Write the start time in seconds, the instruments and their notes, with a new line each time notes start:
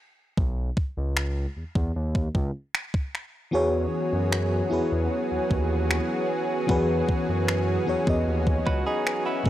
0.37 analog synth bass B1, kick
0.77 kick
0.97 analog synth bass C#2
1.17 finger snap
1.57 analog synth bass E2
1.75 analog synth bass E2, kick
1.96 analog synth bass D#2
2.15 kick
2.35 analog synth bass C#2, kick
2.75 finger snap
2.94 kick
3.15 finger snap
3.51 analog synth bass E2, fm electric piano E3 B3 F#4 G#4 C#5, analog synth pad F#3 B3 C#4 F#4 G#4
4.13 analog synth bass F#2
4.32 finger snap
4.70 analog synth bass E2, fm electric piano B3 E4 F#4 G#4 B4
4.92 analog synth bass E2
5.32 analog synth bass D#2
5.51 analog synth bass D#2, kick
5.91 finger snap
6.67 analog synth bass E2, fm electric piano E3 B3 F#4 G#4 B4, kick
7.09 kick
7.29 analog synth bass F#2
7.48 finger snap
7.86 analog synth bass E2, fm electric piano E3 B3 F#4 G#4 C#5
8.05 analog synth bass E2, fm electric piano E3 B3 F#4 G#4 D#5, kick
8.27 analog synth bass D#2
8.47 kick
8.66 analog synth bass C#2, clean electric guitar F#4 B4, fm electric piano F#5, kick
8.86 clean electric guitar D#4 G#4, fm electric piano D#5 B5
9.06 fm electric piano B4 G#5, finger snap
9.26 clean electric guitar B3 E4, fm electric piano F#5
9.43 analog synth bass A1, fm electric piano A2 A3 C4 G#4, analog synth pad A3 G#4, kick